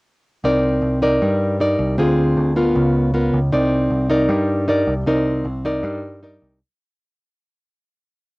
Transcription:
0, 0, Header, 1, 3, 480
1, 0, Start_track
1, 0, Key_signature, -3, "minor"
1, 0, Tempo, 386100
1, 548, Time_signature, 4, 2, 24, 8
1, 10421, End_track
2, 0, Start_track
2, 0, Title_t, "Nylon-string guitar"
2, 0, Program_c, 0, 24
2, 550, Note_on_c, 0, 60, 54
2, 553, Note_on_c, 0, 63, 51
2, 557, Note_on_c, 0, 70, 59
2, 559, Note_on_c, 0, 74, 61
2, 1230, Note_off_c, 0, 63, 0
2, 1231, Note_off_c, 0, 70, 0
2, 1233, Note_off_c, 0, 74, 0
2, 1268, Note_on_c, 0, 63, 59
2, 1276, Note_on_c, 0, 70, 60
2, 1277, Note_on_c, 0, 74, 65
2, 1483, Note_off_c, 0, 60, 0
2, 1517, Note_on_c, 0, 55, 58
2, 1947, Note_off_c, 0, 63, 0
2, 1950, Note_off_c, 0, 70, 0
2, 1951, Note_off_c, 0, 74, 0
2, 1992, Note_on_c, 0, 63, 53
2, 2000, Note_on_c, 0, 70, 48
2, 2003, Note_on_c, 0, 74, 54
2, 2429, Note_off_c, 0, 63, 0
2, 2431, Note_off_c, 0, 70, 0
2, 2434, Note_off_c, 0, 74, 0
2, 2445, Note_off_c, 0, 55, 0
2, 2461, Note_on_c, 0, 60, 62
2, 2466, Note_on_c, 0, 50, 54
2, 2473, Note_on_c, 0, 65, 54
2, 2479, Note_on_c, 0, 68, 56
2, 3142, Note_off_c, 0, 60, 0
2, 3147, Note_off_c, 0, 65, 0
2, 3151, Note_off_c, 0, 68, 0
2, 3184, Note_on_c, 0, 59, 52
2, 3190, Note_on_c, 0, 65, 58
2, 3194, Note_on_c, 0, 70, 64
2, 3399, Note_off_c, 0, 50, 0
2, 3428, Note_on_c, 0, 49, 55
2, 3863, Note_off_c, 0, 59, 0
2, 3864, Note_off_c, 0, 65, 0
2, 3868, Note_off_c, 0, 70, 0
2, 3901, Note_on_c, 0, 59, 52
2, 3908, Note_on_c, 0, 65, 49
2, 3912, Note_on_c, 0, 70, 55
2, 4210, Note_off_c, 0, 59, 0
2, 4212, Note_off_c, 0, 65, 0
2, 4215, Note_off_c, 0, 70, 0
2, 4359, Note_off_c, 0, 49, 0
2, 4381, Note_on_c, 0, 63, 53
2, 4382, Note_on_c, 0, 60, 55
2, 4385, Note_on_c, 0, 70, 50
2, 4393, Note_on_c, 0, 74, 62
2, 5061, Note_off_c, 0, 63, 0
2, 5063, Note_off_c, 0, 70, 0
2, 5067, Note_off_c, 0, 74, 0
2, 5092, Note_on_c, 0, 63, 64
2, 5103, Note_on_c, 0, 70, 53
2, 5108, Note_on_c, 0, 74, 61
2, 5316, Note_off_c, 0, 60, 0
2, 5333, Note_on_c, 0, 55, 50
2, 5777, Note_off_c, 0, 63, 0
2, 5783, Note_off_c, 0, 70, 0
2, 5784, Note_off_c, 0, 74, 0
2, 5816, Note_on_c, 0, 63, 52
2, 5826, Note_on_c, 0, 70, 56
2, 5834, Note_on_c, 0, 74, 52
2, 6127, Note_off_c, 0, 63, 0
2, 6131, Note_off_c, 0, 70, 0
2, 6135, Note_off_c, 0, 74, 0
2, 6272, Note_off_c, 0, 55, 0
2, 6303, Note_on_c, 0, 60, 55
2, 6305, Note_on_c, 0, 63, 55
2, 6309, Note_on_c, 0, 74, 54
2, 6310, Note_on_c, 0, 70, 56
2, 6779, Note_off_c, 0, 63, 0
2, 6779, Note_off_c, 0, 70, 0
2, 6782, Note_off_c, 0, 74, 0
2, 7023, Note_on_c, 0, 63, 57
2, 7031, Note_on_c, 0, 70, 54
2, 7031, Note_on_c, 0, 74, 63
2, 7240, Note_off_c, 0, 60, 0
2, 7257, Note_on_c, 0, 55, 53
2, 7705, Note_off_c, 0, 63, 0
2, 7707, Note_off_c, 0, 70, 0
2, 7708, Note_off_c, 0, 74, 0
2, 7743, Note_on_c, 0, 63, 49
2, 7751, Note_on_c, 0, 70, 49
2, 7755, Note_on_c, 0, 74, 57
2, 8185, Note_off_c, 0, 63, 0
2, 8187, Note_off_c, 0, 70, 0
2, 8191, Note_off_c, 0, 74, 0
2, 8197, Note_off_c, 0, 55, 0
2, 10421, End_track
3, 0, Start_track
3, 0, Title_t, "Picked electric bass"
3, 0, Program_c, 1, 34
3, 545, Note_on_c, 1, 36, 81
3, 992, Note_off_c, 1, 36, 0
3, 1016, Note_on_c, 1, 36, 77
3, 1466, Note_off_c, 1, 36, 0
3, 1514, Note_on_c, 1, 43, 86
3, 2178, Note_off_c, 1, 43, 0
3, 2223, Note_on_c, 1, 36, 86
3, 2446, Note_off_c, 1, 36, 0
3, 2463, Note_on_c, 1, 38, 81
3, 2908, Note_off_c, 1, 38, 0
3, 2944, Note_on_c, 1, 38, 79
3, 3388, Note_off_c, 1, 38, 0
3, 3424, Note_on_c, 1, 37, 95
3, 4091, Note_off_c, 1, 37, 0
3, 4145, Note_on_c, 1, 37, 83
3, 4365, Note_off_c, 1, 37, 0
3, 4384, Note_on_c, 1, 36, 94
3, 4828, Note_off_c, 1, 36, 0
3, 4854, Note_on_c, 1, 36, 80
3, 5302, Note_off_c, 1, 36, 0
3, 5330, Note_on_c, 1, 43, 95
3, 6005, Note_off_c, 1, 43, 0
3, 6058, Note_on_c, 1, 36, 80
3, 6282, Note_off_c, 1, 36, 0
3, 6293, Note_on_c, 1, 36, 88
3, 6743, Note_off_c, 1, 36, 0
3, 6770, Note_on_c, 1, 36, 78
3, 7222, Note_off_c, 1, 36, 0
3, 7249, Note_on_c, 1, 43, 93
3, 7927, Note_off_c, 1, 43, 0
3, 7981, Note_on_c, 1, 36, 87
3, 8206, Note_off_c, 1, 36, 0
3, 10421, End_track
0, 0, End_of_file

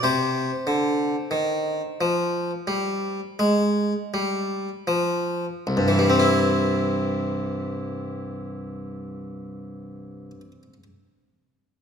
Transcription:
0, 0, Header, 1, 2, 480
1, 0, Start_track
1, 0, Tempo, 1290323
1, 12, Time_signature, 4, 2, 24, 8
1, 492, Tempo, 1363636
1, 972, Tempo, 1431981
1, 1452, Tempo, 1550388
1, 3836, End_track
2, 0, Start_track
2, 0, Title_t, "Harpsichord"
2, 0, Program_c, 0, 6
2, 12, Note_on_c, 0, 48, 50
2, 14, Note_on_c, 0, 72, 69
2, 183, Note_off_c, 0, 48, 0
2, 249, Note_on_c, 0, 50, 43
2, 424, Note_off_c, 0, 50, 0
2, 488, Note_on_c, 0, 51, 45
2, 660, Note_off_c, 0, 51, 0
2, 733, Note_on_c, 0, 53, 46
2, 907, Note_off_c, 0, 53, 0
2, 968, Note_on_c, 0, 55, 49
2, 1140, Note_off_c, 0, 55, 0
2, 1209, Note_on_c, 0, 56, 41
2, 1248, Note_off_c, 0, 72, 0
2, 1384, Note_off_c, 0, 56, 0
2, 1458, Note_on_c, 0, 55, 47
2, 1626, Note_off_c, 0, 55, 0
2, 1686, Note_on_c, 0, 53, 42
2, 1861, Note_off_c, 0, 53, 0
2, 1933, Note_on_c, 0, 36, 50
2, 1964, Note_on_c, 0, 43, 42
2, 1997, Note_on_c, 0, 52, 40
2, 2031, Note_on_c, 0, 55, 41
2, 2064, Note_on_c, 0, 60, 42
2, 2095, Note_on_c, 0, 64, 41
2, 3367, Note_off_c, 0, 36, 0
2, 3399, Note_off_c, 0, 43, 0
2, 3432, Note_off_c, 0, 52, 0
2, 3466, Note_off_c, 0, 55, 0
2, 3499, Note_off_c, 0, 60, 0
2, 3530, Note_off_c, 0, 64, 0
2, 3836, End_track
0, 0, End_of_file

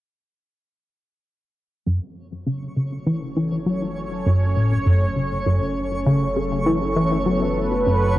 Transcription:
0, 0, Header, 1, 5, 480
1, 0, Start_track
1, 0, Tempo, 600000
1, 1492, Time_signature, 4, 2, 24, 8
1, 6550, End_track
2, 0, Start_track
2, 0, Title_t, "Synth texture"
2, 0, Program_c, 0, 99
2, 1491, Note_on_c, 0, 73, 75
2, 6550, Note_off_c, 0, 73, 0
2, 6550, End_track
3, 0, Start_track
3, 0, Title_t, "Analog synth pad"
3, 0, Program_c, 1, 89
3, 1494, Note_on_c, 1, 54, 65
3, 1716, Note_on_c, 1, 57, 72
3, 1833, Note_on_c, 1, 61, 66
3, 1862, Note_on_c, 1, 69, 82
3, 2380, Note_on_c, 1, 73, 84
3, 5480, Note_on_c, 1, 59, 66
3, 5618, Note_off_c, 1, 61, 0
3, 5710, Note_on_c, 1, 71, 86
3, 5856, Note_off_c, 1, 73, 0
3, 6550, Note_off_c, 1, 54, 0
3, 6550, Note_off_c, 1, 57, 0
3, 6550, Note_off_c, 1, 59, 0
3, 6550, Note_off_c, 1, 69, 0
3, 6550, Note_off_c, 1, 71, 0
3, 6550, End_track
4, 0, Start_track
4, 0, Title_t, "Synth arpeggio sound"
4, 0, Program_c, 2, 84
4, 1493, Note_on_c, 2, 42, 90
4, 1596, Note_off_c, 2, 42, 0
4, 1972, Note_on_c, 2, 49, 93
4, 2145, Note_off_c, 2, 49, 0
4, 2211, Note_on_c, 2, 49, 68
4, 2384, Note_off_c, 2, 49, 0
4, 2451, Note_on_c, 2, 52, 76
4, 2555, Note_off_c, 2, 52, 0
4, 2691, Note_on_c, 2, 52, 69
4, 2864, Note_off_c, 2, 52, 0
4, 2929, Note_on_c, 2, 54, 73
4, 3103, Note_off_c, 2, 54, 0
4, 3410, Note_on_c, 2, 42, 93
4, 3639, Note_off_c, 2, 42, 0
4, 3651, Note_on_c, 2, 45, 69
4, 3824, Note_off_c, 2, 45, 0
4, 3889, Note_on_c, 2, 42, 91
4, 4063, Note_off_c, 2, 42, 0
4, 4130, Note_on_c, 2, 49, 67
4, 4303, Note_off_c, 2, 49, 0
4, 4369, Note_on_c, 2, 42, 95
4, 4474, Note_off_c, 2, 42, 0
4, 4852, Note_on_c, 2, 49, 95
4, 5024, Note_off_c, 2, 49, 0
4, 5091, Note_on_c, 2, 49, 71
4, 5264, Note_off_c, 2, 49, 0
4, 5330, Note_on_c, 2, 52, 76
4, 5434, Note_off_c, 2, 52, 0
4, 5572, Note_on_c, 2, 52, 69
4, 5744, Note_off_c, 2, 52, 0
4, 5808, Note_on_c, 2, 54, 69
4, 5983, Note_off_c, 2, 54, 0
4, 6290, Note_on_c, 2, 42, 93
4, 6519, Note_off_c, 2, 42, 0
4, 6550, End_track
5, 0, Start_track
5, 0, Title_t, "Analog synth bass"
5, 0, Program_c, 3, 38
5, 1492, Note_on_c, 3, 30, 84
5, 6550, Note_off_c, 3, 30, 0
5, 6550, End_track
0, 0, End_of_file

